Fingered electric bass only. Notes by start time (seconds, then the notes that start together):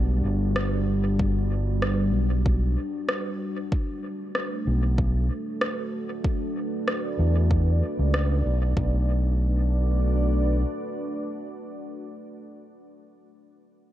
Already playing: B1
0.25 G1
2.14 B1
4.67 B1
7.19 E2
7.99 C#2
8.46 B1
8.77 B1